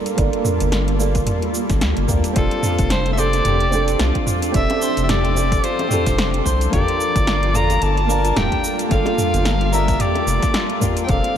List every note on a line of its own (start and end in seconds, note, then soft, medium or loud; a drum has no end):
0.00 2.32 G3 medium
0.00 0.14 A#3 loud
0.00 2.32 A#3 loud
0.00 0.15 D4 medium
0.00 0.16 F4 medium
0.00 2.32 F4 medium
0.00 0.17 A4 loud
0.00 11.05 A4 medium
0.06 closed hi-hat soft
0.06 cabasa soft
0.15 0.30 G1 loud
0.15 0.96 A#3 loud
0.15 0.97 D4 medium
0.15 0.98 F4 medium
0.15 kick loud
0.15 closed hi-hat medium
0.15 cabasa soft
0.21 0.99 A4 loud
0.33 closed hi-hat soft
0.45 mid tom medium
0.45 cabasa medium
0.60 1.23 G1 medium
0.60 closed hi-hat soft
0.60 cabasa soft
0.72 snare loud
0.72 closed hi-hat medium
0.72 cabasa soft
0.88 closed hi-hat soft
0.99 1.51 A#3 medium
0.99 1.52 D4 medium
0.99 1.52 F4 medium
0.99 1.53 A4 medium
0.99 cabasa medium
1.15 kick loud
1.15 closed hi-hat soft
1.15 cabasa soft
1.27 closed hi-hat medium
1.27 mid tom medium
1.27 cabasa soft
1.42 closed hi-hat soft
1.54 cabasa medium
1.70 1.83 G1 medium
1.70 kick loud
1.70 snare soft
1.70 closed hi-hat soft
1.70 cabasa soft
1.81 1.94 D2 medium
1.81 snare medium
1.81 closed hi-hat medium
1.81 cabasa soft
1.97 2.07 G1 medium
1.97 closed hi-hat soft
2.08 2.21 D2 medium
2.08 2.33 A#3 loud
2.08 2.33 D4 medium
2.08 2.34 F4 medium
2.08 2.34 G4 loud
2.08 kick medium
2.08 mid tom medium
2.08 cabasa medium
2.24 closed hi-hat soft
2.24 cabasa soft
2.33 2.49 F1 loud
2.33 6.69 F3 medium
2.33 3.14 C4 medium
2.33 3.15 D4 medium
2.33 6.69 D4 medium
2.33 2.62 F4 medium
2.33 4.52 G4 medium
2.33 3.16 G4 medium
2.33 kick loud
2.33 closed hi-hat medium
2.33 cabasa soft
2.38 2.88 A4 medium
2.38 3.16 A4 loud
2.51 closed hi-hat soft
2.63 2.89 F4 medium
2.63 mid tom medium
2.63 cabasa medium
2.79 3.41 F1 medium
2.79 kick loud
2.79 closed hi-hat soft
2.79 cabasa soft
2.90 3.11 C5 loud
2.90 snare loud
2.90 closed hi-hat medium
2.90 cabasa soft
3.06 closed hi-hat soft
3.13 3.68 C4 medium
3.13 3.21 E5 medium
3.17 3.69 D4 medium
3.17 3.70 G4 medium
3.17 3.70 A4 medium
3.17 3.43 C5 loud
3.17 4.28 D5 loud
3.17 cabasa medium
3.33 closed hi-hat soft
3.33 high bongo soft
3.33 cabasa soft
3.45 3.96 F1 loud
3.45 3.70 G4 medium
3.45 closed hi-hat medium
3.45 mid tom medium
3.45 cabasa soft
3.60 closed hi-hat soft
3.70 4.50 C4 loud
3.70 4.51 D4 medium
3.70 4.52 G4 medium
3.70 cabasa medium
3.75 4.53 A4 loud
3.88 closed hi-hat soft
3.88 cabasa soft
3.99 4.12 C2 medium
3.99 4.26 F4 medium
3.99 snare loud
3.99 closed hi-hat medium
3.99 cabasa soft
4.15 kick medium
4.15 closed hi-hat soft
4.27 4.52 F4 medium
4.27 mid tom medium
4.27 cabasa medium
4.42 closed hi-hat soft
4.42 cabasa soft
4.52 4.67 F1 loud
4.52 5.32 C4 loud
4.52 5.33 D4 medium
4.52 11.05 F4 medium
4.52 5.34 G4 medium
4.52 kick loud
4.52 closed hi-hat medium
4.52 cabasa soft
4.56 5.35 A4 loud
4.56 5.00 E5 loud
4.70 closed hi-hat soft
4.70 high bongo medium
4.82 5.07 C5 loud
4.82 cabasa medium
4.97 5.60 F1 medium
4.97 closed hi-hat soft
4.97 cabasa soft
5.04 5.12 E5 medium
5.09 5.34 G4 medium
5.09 5.66 D5 loud
5.09 snare loud
5.09 closed hi-hat medium
5.09 mid tom medium
5.09 cabasa soft
5.25 closed hi-hat soft
5.35 5.87 C4 medium
5.35 5.88 D4 medium
5.35 5.88 G4 medium
5.35 5.89 A4 medium
5.35 cabasa medium
5.52 kick loud
5.52 closed hi-hat soft
5.52 cabasa soft
5.64 5.90 F4 medium
5.64 6.46 C5 medium
5.64 closed hi-hat medium
5.64 cabasa soft
5.79 closed hi-hat soft
5.79 high bongo medium
5.88 6.68 C4 loud
5.88 6.69 D4 medium
5.88 6.16 F4 medium
5.88 6.70 G4 medium
5.88 mid tom medium
5.88 cabasa medium
5.94 6.71 A4 loud
6.06 6.41 F1 medium
6.06 kick loud
6.06 snare soft
6.06 closed hi-hat soft
6.06 cabasa medium
6.18 snare loud
6.18 closed hi-hat medium
6.18 cabasa soft
6.34 closed hi-hat soft
6.46 6.68 C2 medium
6.46 6.70 C5 loud
6.46 kick medium
6.46 cabasa medium
6.61 closed hi-hat soft
6.61 cabasa soft
6.70 6.85 G1 loud
6.70 11.05 G3 medium
6.70 7.50 A#3 loud
6.70 11.05 A#3 loud
6.70 7.51 D4 medium
6.70 7.52 F4 medium
6.70 6.98 G4 medium
6.70 7.57 D5 loud
6.70 kick loud
6.70 closed hi-hat medium
6.70 mid tom medium
6.70 cabasa soft
6.75 7.53 A4 loud
6.88 closed hi-hat soft
7.01 cabasa medium
7.16 7.78 G1 loud
7.16 kick loud
7.16 closed hi-hat soft
7.16 cabasa soft
7.27 7.53 F4 medium
7.27 snare loud
7.27 closed hi-hat medium
7.27 cabasa soft
7.43 closed hi-hat soft
7.53 8.05 A#3 medium
7.53 8.06 D4 medium
7.53 7.79 F4 medium
7.53 8.07 F4 medium
7.53 8.07 A4 medium
7.53 7.84 A#5 loud
7.53 mid tom medium
7.53 cabasa medium
7.70 closed hi-hat soft
7.70 high bongo soft
7.70 cabasa soft
7.82 8.32 G1 loud
7.82 8.39 A5 loud
7.82 closed hi-hat soft
7.82 cabasa soft
7.97 closed hi-hat soft
8.06 8.87 A#3 loud
8.06 8.88 D4 medium
8.06 8.89 F4 medium
8.06 8.34 A#4 loud
8.06 cabasa medium
8.12 8.89 A5 loud
8.25 closed hi-hat soft
8.25 cabasa soft
8.37 8.49 D1 medium
8.37 8.61 G4 medium
8.37 8.80 G5 loud
8.37 snare medium
8.37 closed hi-hat medium
8.37 mid tom medium
8.37 cabasa soft
8.52 kick medium
8.52 closed hi-hat soft
8.64 cabasa medium
8.79 closed hi-hat soft
8.79 cabasa soft
8.88 9.03 G1 medium
8.88 9.69 A#3 medium
8.88 9.70 D4 medium
8.88 9.17 F4 medium
8.88 9.70 F4 medium
8.88 kick loud
8.88 closed hi-hat medium
8.88 cabasa soft
8.92 9.71 A4 loud
8.92 9.76 F5 loud
9.06 closed hi-hat soft
9.06 high bongo medium
9.18 9.43 F4 medium
9.18 mid tom medium
9.18 cabasa medium
9.34 9.96 G1 medium
9.34 closed hi-hat soft
9.34 cabasa soft
9.45 snare loud
9.45 closed hi-hat medium
9.45 cabasa soft
9.61 closed hi-hat soft
9.71 10.24 A#3 medium
9.71 10.24 D4 medium
9.71 10.25 F4 medium
9.71 9.98 A#4 loud
9.71 10.03 E5 medium
9.71 10.25 A5 medium
9.71 cabasa medium
9.88 kick loud
9.88 closed hi-hat soft
9.88 cabasa soft
10.00 10.25 G4 medium
10.00 10.83 D5 medium
10.00 closed hi-hat medium
10.00 mid tom medium
10.00 cabasa soft
10.15 closed hi-hat soft
10.15 high bongo soft
10.27 10.39 F1 medium
10.27 cabasa medium
10.43 kick loud
10.43 snare soft
10.43 closed hi-hat soft
10.43 cabasa soft
10.54 10.81 F4 medium
10.54 snare medium
10.54 closed hi-hat soft
10.54 cabasa soft
10.70 closed hi-hat soft
10.80 11.06 A#3 medium
10.80 11.06 D4 medium
10.80 11.07 F4 medium
10.80 11.06 F4 medium
10.80 11.07 G4 medium
10.80 kick medium
10.80 mid tom medium
10.80 cabasa medium
10.97 closed hi-hat soft
10.97 cabasa soft
11.04 11.37 C4 loud
11.04 11.12 G5 medium
11.08 11.21 F1 loud
11.08 11.37 D4 medium
11.08 11.37 G4 medium
11.08 11.37 A4 loud
11.08 11.37 F5 loud
11.08 kick loud
11.08 closed hi-hat medium
11.08 cabasa soft
11.24 closed hi-hat soft